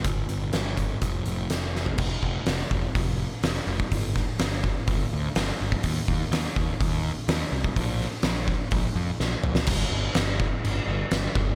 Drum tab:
CC |----------------|x---------------|----------------|----------------|
HH |x-x-x-x-x-x-x---|----o---o---o---|o---o---o---o---|o---o---o---o---|
SD |----o-------o-o-|----o-------o---|--o-o-------o---|----o-------o---|
T2 |----------------|----------------|----------------|----------------|
FT |---------------o|----------------|----------------|----------------|
BD |o-----o-o-------|o-o---o-o------o|o-o---o-o------o|o-o---o-o------o|

CC |----------------|x---x---x---x---|
HH |o---o---o-------|----------------|
SD |--o-o-------o--o|----o-------o---|
T2 |--------------o-|----------------|
FT |----------------|----------------|
BD |o-----o-o-------|o-----o-------o-|